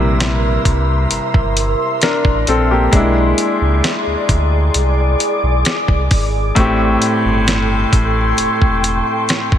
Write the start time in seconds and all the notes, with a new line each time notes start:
Already playing: A#1 C3 G3 A#3 D4 E4 A#4 B4 E5 C6
0.20 snare, closed hi-hat
0.65 C2, kick, closed hi-hat
1.11 G1, closed hi-hat
1.34 G1, kick
1.57 closed hi-hat
2.02 D4 A#4, snare, closed hi-hat
2.25 A1, kick
2.47 A#1 C4 A4, closed hi-hat
2.71 A#3 G4
2.92 B1 G#3 D4 G#4 D5, kick, closed hi-hat
2.96 E4
3.38 closed hi-hat
3.61 C#2
3.84 snare, closed hi-hat
4.07 D2
4.29 D2, kick, closed hi-hat
4.74 C2 D6, closed hi-hat
5.20 closed hi-hat
5.43 B1
5.65 snare, closed hi-hat
5.88 C2, kick
6.11 G#1, kick, open hi-hat
6.55 A1 A2 A3 C4 A4 G5 C6, kick, closed hi-hat
6.60 G4
7.02 closed hi-hat
7.25 G1
7.48 snare, closed hi-hat
7.93 A1, kick, closed hi-hat
8.38 E1, closed hi-hat
8.62 E1, kick
8.84 closed hi-hat
9.29 snare, closed hi-hat
9.52 G1, kick